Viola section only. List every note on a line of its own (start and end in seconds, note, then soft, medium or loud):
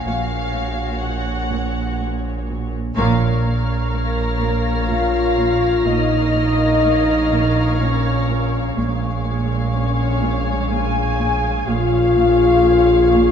2.96 5.83 A#4 soft
2.96 5.83 C#5 soft
5.87 8.73 A#4 soft
5.87 8.73 C#5 soft
8.77 11.63 G#3 soft
8.77 11.64 C#5 soft
11.67 13.32 G#4 soft
11.67 13.32 C#5 soft